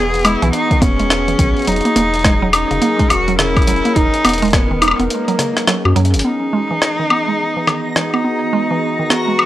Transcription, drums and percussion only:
0.14 closed hi-hat soft
0.16 closed hi-hat soft
0.19 closed hi-hat soft
0.21 closed hi-hat soft
0.23 closed hi-hat soft
0.25 closed hi-hat medium
0.25 high woodblock medium
0.42 closed hi-hat soft
0.53 closed hi-hat medium
0.71 kick medium
0.71 closed hi-hat soft
0.82 kick loud
0.82 closed hi-hat medium
0.82 high tom loud
0.99 closed hi-hat soft
1.10 cross-stick loud
1.10 closed hi-hat medium
1.28 closed hi-hat soft
1.39 kick loud
1.39 closed hi-hat medium
1.57 closed hi-hat soft
1.59 closed hi-hat soft
1.62 closed hi-hat soft
1.65 closed hi-hat soft
1.67 closed hi-hat medium
1.72 closed hi-hat soft
1.76 closed hi-hat soft
1.81 closed hi-hat soft
1.85 closed hi-hat soft
1.96 closed hi-hat medium
1.96 high tom medium
2.14 closed hi-hat soft
2.16 closed hi-hat soft
2.19 closed hi-hat soft
2.21 closed hi-hat soft
2.23 cross-stick loud
2.23 closed hi-hat soft
2.25 kick loud
2.25 closed hi-hat medium
2.53 closed hi-hat medium
2.53 high woodblock medium
2.71 closed hi-hat soft
2.82 closed hi-hat medium
2.99 kick medium
2.99 closed hi-hat soft
3.10 closed hi-hat medium
3.10 high woodblock medium
3.28 closed hi-hat soft
3.39 cross-stick loud
3.39 closed hi-hat medium
3.57 kick loud
3.57 closed hi-hat soft
3.57 high woodblock soft
3.62 closed hi-hat soft
3.67 closed hi-hat medium
3.76 closed hi-hat soft
3.85 closed hi-hat soft
3.96 kick medium
3.96 closed hi-hat medium
4.14 closed hi-hat soft
4.25 closed hi-hat medium
4.25 high woodblock medium
4.29 closed hi-hat medium
4.33 closed hi-hat medium
4.38 closed hi-hat soft
4.42 closed hi-hat soft
4.45 closed hi-hat soft
4.48 closed hi-hat soft
4.51 kick loud
4.51 cross-stick loud
4.51 closed hi-hat soft
4.53 closed hi-hat medium
4.53 high tom medium
4.82 closed hi-hat loud
4.82 high woodblock medium
4.88 high woodblock medium
4.91 high woodblock medium
5.00 closed hi-hat soft
5.10 closed hi-hat medium
5.28 closed hi-hat soft
5.39 cross-stick medium
5.39 closed hi-hat loud
5.57 cross-stick medium
5.57 closed hi-hat soft
5.67 cross-stick loud
5.67 closed hi-hat medium
5.85 high woodblock soft
5.96 closed hi-hat medium
6.05 closed hi-hat medium
6.14 closed hi-hat medium
6.19 closed hi-hat medium
6.82 cross-stick loud
7.10 high woodblock medium
7.67 cross-stick medium
7.67 high woodblock medium
7.96 cross-stick loud
8.14 high woodblock soft
9.10 cross-stick loud
9.39 high woodblock medium

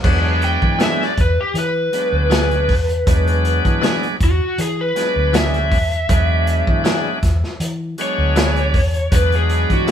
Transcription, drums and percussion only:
0.04 kick loud
0.04 crash loud
0.42 closed hi-hat soft
0.62 kick medium
0.80 snare medium
0.80 closed hi-hat medium
1.02 snare soft
1.18 kick medium
1.18 closed hi-hat medium
1.55 closed hi-hat medium
1.93 closed hi-hat medium
2.31 snare loud
2.31 closed hi-hat medium
2.51 closed hi-hat soft
2.69 kick medium
2.69 open hi-hat medium
2.89 closed hi-hat soft
3.07 kick loud
3.07 closed hi-hat medium
3.27 closed hi-hat soft
3.45 closed hi-hat medium
3.65 kick medium
3.65 closed hi-hat soft
3.83 snare loud
3.83 closed hi-hat medium
4.03 closed hi-hat soft
4.21 kick medium
4.21 closed hi-hat medium
4.58 closed hi-hat medium
4.96 snare soft
4.96 closed hi-hat medium
5.34 snare loud
5.34 closed hi-hat medium
5.54 closed hi-hat soft
5.71 kick medium
5.71 open hi-hat medium
5.92 closed hi-hat soft
6.09 kick loud
6.09 closed hi-hat medium
6.47 closed hi-hat medium
6.67 kick medium
6.85 snare medium
6.85 closed hi-hat medium
7.23 kick medium
7.23 snare soft
7.23 closed hi-hat medium
7.44 snare soft
7.60 closed hi-hat medium
7.98 closed hi-hat medium
8.36 snare loud
8.36 closed hi-hat medium
8.56 closed hi-hat soft
8.74 kick medium
8.74 open hi-hat medium
8.94 closed hi-hat soft
9.12 kick loud
9.12 closed hi-hat loud
9.32 closed hi-hat soft
9.49 closed hi-hat medium
9.70 kick medium
9.70 closed hi-hat soft
9.88 closed hi-hat medium

